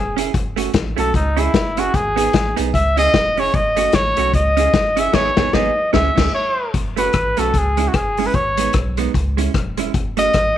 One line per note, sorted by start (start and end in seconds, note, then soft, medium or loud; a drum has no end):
0.00 0.28 E1 medium
0.00 0.18 G#4 medium
0.17 0.30 C#4 medium
0.17 0.31 E4 medium
0.17 0.31 G#4 loud
0.17 closed hi-hat medium
0.34 0.68 F#1 loud
0.34 kick loud
0.34 closed hi-hat medium
0.56 0.70 A3 medium
0.56 0.70 C#4 medium
0.56 0.71 F#4 medium
0.56 closed hi-hat medium
0.74 0.94 A1 loud
0.74 kick loud
0.74 snare loud
0.74 closed hi-hat medium
0.96 1.11 B1 medium
0.96 1.10 A3 medium
0.96 1.10 C#4 loud
0.96 1.11 F#4 loud
0.96 1.14 A4 medium
0.96 closed hi-hat medium
1.14 1.48 C#2 loud
1.14 1.41 D#4 medium
1.14 kick loud
1.14 closed hi-hat medium
1.36 1.50 C#4 medium
1.36 1.50 E4 medium
1.36 1.81 E4 loud
1.36 1.51 G#4 medium
1.36 closed hi-hat medium
1.54 1.88 F#1 medium
1.54 kick loud
1.54 snare loud
1.54 closed hi-hat medium
1.77 1.91 C#4 medium
1.77 1.91 E4 medium
1.77 1.97 F#4 medium
1.77 1.91 G#4 medium
1.77 closed hi-hat loud
1.94 2.28 G#1 loud
1.94 2.58 G#4 loud
1.94 kick loud
1.94 closed hi-hat medium
2.16 2.30 B3 medium
2.16 2.30 D#4 loud
2.16 2.31 G#4 loud
2.16 closed hi-hat loud
2.33 2.54 A1 loud
2.33 kick loud
2.33 snare loud
2.33 closed hi-hat medium
2.56 2.72 B1 medium
2.56 2.70 B3 medium
2.56 2.70 D#4 loud
2.56 2.71 G#4 loud
2.56 closed hi-hat medium
2.74 3.08 C#2 loud
2.74 2.96 E5 loud
2.74 kick medium
2.74 closed hi-hat medium
2.97 3.10 C#4 medium
2.97 3.11 E4 medium
2.97 3.11 G#4 medium
2.97 3.41 D#5 loud
2.97 closed hi-hat medium
3.14 3.48 E1 medium
3.14 kick loud
3.14 snare loud
3.14 closed hi-hat medium
3.37 3.51 C#4 medium
3.37 3.51 E4 medium
3.37 3.52 G#4 loud
3.37 3.57 C#5 loud
3.37 open hi-hat medium
3.54 3.88 F#1 loud
3.54 3.97 D#5 loud
3.54 kick loud
3.54 closed hi-hat medium
3.76 3.90 A3 medium
3.76 3.90 C#4 medium
3.76 3.91 F#4 loud
3.76 closed hi-hat medium
3.92 4.14 A1 medium
3.92 4.34 C#5 loud
3.92 kick loud
3.92 snare loud
3.92 closed hi-hat medium
4.17 4.31 B1 medium
4.17 4.31 A3 medium
4.17 4.31 C#4 medium
4.17 4.31 F#4 medium
4.17 closed hi-hat medium
4.34 4.68 C#2 loud
4.34 5.01 D#5 loud
4.34 kick loud
4.34 closed hi-hat medium
4.57 4.70 C#4 loud
4.57 4.71 E4 medium
4.57 4.71 G#4 medium
4.57 closed hi-hat medium
4.73 5.08 F#1 loud
4.73 kick loud
4.73 snare loud
4.73 closed hi-hat medium
4.96 5.10 C#4 loud
4.96 5.11 E4 medium
4.96 5.11 G#4 loud
4.96 5.16 E5 loud
4.96 closed hi-hat loud
5.12 5.30 G#1 loud
5.12 5.29 B3 medium
5.12 5.30 D#4 loud
5.12 5.30 G#4 medium
5.12 5.56 C#5 loud
5.12 kick loud
5.12 snare loud
5.12 crash medium
5.37 5.49 G#1 loud
5.37 5.48 B3 loud
5.37 5.49 D#4 medium
5.37 5.49 G#4 loud
5.37 kick loud
5.37 snare loud
5.53 5.70 G#1 loud
5.53 5.70 B3 loud
5.53 5.70 D#4 loud
5.53 5.71 G#4 loud
5.53 5.93 D#5 medium
5.53 kick loud
5.53 snare loud
5.93 6.10 C#2 loud
5.93 6.09 C#4 loud
5.93 6.10 E4 loud
5.93 6.11 G#4 loud
5.93 6.31 E5 loud
5.93 kick loud
5.93 snare loud
6.16 6.29 C#2 loud
6.16 6.28 C#4 loud
6.16 6.28 E4 loud
6.16 6.29 G#4 loud
6.16 kick loud
6.16 snare loud
6.16 crash medium
6.34 6.71 C#5 medium
6.74 7.08 F#1 loud
6.74 kick loud
6.74 closed hi-hat medium
6.96 7.10 A3 medium
6.96 7.11 C#4 medium
6.96 7.11 F#4 medium
6.96 7.40 B4 medium
6.96 closed hi-hat medium
7.13 7.34 A1 medium
7.13 kick loud
7.13 cross-stick loud
7.13 closed hi-hat medium
7.37 7.52 B1 medium
7.37 7.50 A3 medium
7.37 7.51 C#4 medium
7.37 7.51 F#4 medium
7.37 7.59 A4 medium
7.37 closed hi-hat medium
7.54 7.88 C#2 loud
7.54 kick medium
7.54 closed hi-hat medium
7.58 7.90 G#4 medium
7.77 7.91 G#3 medium
7.77 7.91 C#4 medium
7.77 7.91 E4 medium
7.77 closed hi-hat medium
7.88 7.97 F#4 medium
7.94 8.28 F#1 loud
7.94 8.28 G#4 medium
7.94 kick loud
7.94 cross-stick loud
7.94 closed hi-hat medium
8.17 8.31 G#3 medium
8.17 8.32 C#4 medium
8.17 8.32 E4 medium
8.17 open hi-hat medium
8.26 8.36 B4 medium
8.34 8.68 G#1 loud
8.34 8.74 C#5 loud
8.34 kick loud
8.34 closed hi-hat medium
8.57 8.71 G#3 medium
8.57 8.71 B3 medium
8.57 8.71 D#4 medium
8.57 closed hi-hat medium
8.73 9.08 B1 medium
8.73 kick loud
8.73 cross-stick loud
8.73 closed hi-hat medium
8.97 9.11 G#3 medium
8.97 9.11 B3 medium
8.97 9.12 D#4 medium
8.97 closed hi-hat medium
9.14 9.48 C#2 loud
9.14 kick medium
9.14 closed hi-hat medium
9.37 9.51 G#3 medium
9.37 9.51 C#4 medium
9.37 9.51 E4 medium
9.37 closed hi-hat medium
9.54 9.88 E1 medium
9.54 kick loud
9.54 cross-stick loud
9.54 closed hi-hat medium
9.77 9.91 G#3 medium
9.77 9.91 C#4 medium
9.77 9.92 E4 medium
9.77 closed hi-hat loud
9.94 10.28 F#1 loud
9.94 kick loud
9.94 closed hi-hat medium
10.17 10.30 A3 medium
10.17 10.31 C#4 medium
10.17 10.31 F#4 medium
10.17 10.58 D#5 loud
10.17 closed hi-hat medium
10.33 10.55 A1 medium
10.33 kick loud
10.33 cross-stick loud
10.33 closed hi-hat medium